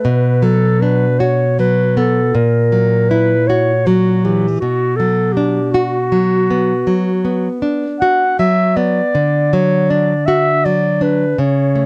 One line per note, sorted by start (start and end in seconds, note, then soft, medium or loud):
0.00 0.45 B4 soft
0.05 2.31 B2 soft
0.43 1.05 F#3 soft
0.43 0.83 A4 soft
0.81 1.45 D4 soft
0.81 1.21 B4 medium
1.19 1.82 F#4 soft
1.19 1.59 C#5 medium
1.59 2.20 F#3 soft
1.59 1.99 B4 medium
1.97 2.35 B3 soft
1.97 2.37 A4 soft
2.35 4.56 A#2 soft
2.35 3.11 A#4 medium
2.72 3.34 F#3 soft
3.09 3.72 E4 soft
3.09 3.49 B4 medium
3.47 4.09 F#4 soft
3.47 3.89 C#5 medium
3.87 4.46 F#3 soft
3.87 4.26 F#4 soft
4.24 4.61 E3 soft
4.24 4.60 G4 soft
4.60 6.83 B2 soft
4.60 4.98 F#4 medium
4.97 5.58 F#3 soft
4.97 5.34 A4 medium
5.33 5.73 G4 soft
5.37 5.96 D4 soft
5.71 7.62 F#4 medium
5.71 6.34 F#4 soft
6.12 6.72 F#3 soft
6.50 7.10 B3 soft
6.87 7.47 F#3 soft
7.25 7.85 B3 soft
7.62 8.23 D4 soft
8.00 8.62 F#4 soft
8.00 8.36 F#5 medium
8.39 9.00 F#3 soft
8.39 8.78 E5 medium
8.76 9.15 B3 soft
8.76 9.55 D5 medium
9.15 11.34 D3 soft
9.53 10.13 F#3 soft
9.53 9.92 C#5 medium
9.90 10.49 D4 soft
9.90 10.28 D5 medium
10.26 10.87 F#4 soft
10.26 10.66 E5 medium
10.65 11.24 F#3 soft
10.65 11.04 D5 medium
11.01 11.38 D4 soft
11.01 11.41 B4 medium
11.38 11.86 C#3 soft
11.38 11.86 C#5 soft
11.75 11.86 A3 soft